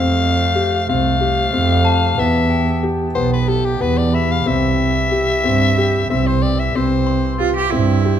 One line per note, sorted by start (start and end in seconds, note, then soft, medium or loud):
0.00 0.72 F2 medium
0.00 2.15 F3 medium
0.00 2.16 A3 medium
0.00 0.36 C4 medium
0.00 8.20 G4 medium
0.00 0.87 F5 loud
0.00 0.20 G6 medium
0.00 0.38 B6 soft
0.55 0.78 G4 medium
0.89 1.42 C2 medium
0.89 1.11 C4 medium
0.89 2.21 F5 loud
1.21 1.43 G4 medium
1.53 2.07 F2 loud
1.53 1.99 C4 medium
1.85 2.46 A5 medium
2.18 2.99 E2 medium
2.18 8.20 E3 medium
2.18 2.64 B3 medium
2.18 4.30 B3 medium
2.18 2.84 E5 medium
2.50 4.75 G5 medium
2.83 3.06 G4 medium
3.15 3.70 B1 medium
3.15 3.38 B3 medium
3.15 3.30 C5 medium
3.33 3.50 B4 medium
3.48 3.71 G4 medium
3.48 3.66 A4 medium
3.65 3.83 G4 medium
3.81 4.36 E2 medium
3.81 4.27 B3 medium
3.81 3.99 B4 medium
3.98 4.16 D5 medium
4.13 4.33 E5 medium
4.13 4.75 B5 soft
4.32 4.49 F5 medium
4.46 5.28 C2 medium
4.46 4.92 C4 medium
4.46 8.20 C4 medium
4.46 6.10 E5 loud
5.11 5.35 G4 medium
5.44 5.99 G2 medium
5.44 5.68 C4 medium
5.78 6.01 G4 medium
6.09 6.64 C2 medium
6.09 6.56 C4 medium
6.09 6.28 E5 medium
6.27 6.44 C5 medium
6.42 6.61 D5 medium
6.59 6.77 E5 medium
6.75 7.56 C2 medium
6.75 7.21 C4 medium
6.75 7.41 C5 medium
7.07 8.20 C6 medium
7.39 7.55 F4 medium
7.39 7.63 G4 medium
7.56 7.72 G4 medium
7.71 8.20 G2 medium
7.71 7.95 C4 medium
7.71 8.20 E4 medium
8.05 8.20 G4 medium